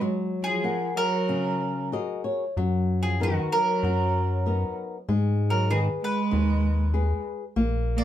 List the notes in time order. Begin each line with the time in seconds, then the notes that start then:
0.01 F#3
0.42 F3 G#4
0.64 G#4 A#4 F#5
0.96 F#3 A#4
1.29 C#3
1.92 F#4 G#4 A#4 D#5
2.24 C#5
2.57 F#2 F#3
3.01 F3 G#4
3.20 D#3 B3 D#4 F#4 A#4
3.52 F#3 A#4
3.83 F#2 F#3
4.46 B3 D#4 A#4
5.09 G#2 G#3
5.50 F#3 A#4
5.70 D#3 G#4 B4
6.02 G#3 B4
6.31 D#2 D#3
6.94 G#4 B4
7.56 A#1 A#3
7.97 A#3 D5